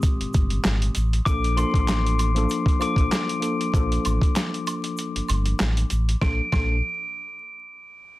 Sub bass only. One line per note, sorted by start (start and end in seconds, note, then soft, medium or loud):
0.20 0.26 G1 soft
0.35 0.59 G1 medium
0.65 0.89 G#1 loud
0.96 1.20 A1 medium
1.26 1.64 A#1 loud
1.74 2.46 A1 loud
2.97 3.08 A#1 medium
3.74 3.98 A#1 loud
4.06 4.19 A1 medium
5.16 5.21 G1 soft
5.30 5.54 G1 medium
5.61 5.85 A1 loud
5.91 6.15 A1 medium
6.22 6.40 A#1 loud
6.53 6.81 A#1 loud